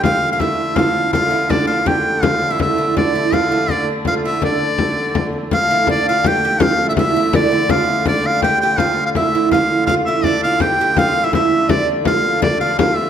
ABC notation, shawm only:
X:1
M:3/4
L:1/16
Q:1/4=165
K:Dm
V:1 name="Shawm"
f3 f e4 f4 | f4 d2 f2 g4 | f3 e e4 d4 | f4 d2 z2 f2 e2 |
d8- d2 z2 | f4 d2 f2 g4 | f3 e e4 d4 | f4 d2 f2 g2 g2 |
f3 f e4 f4 | f2 e2 d2 f2 g4 | f3 e e4 d2 z2 | f4 d2 f2 f2 e2 |]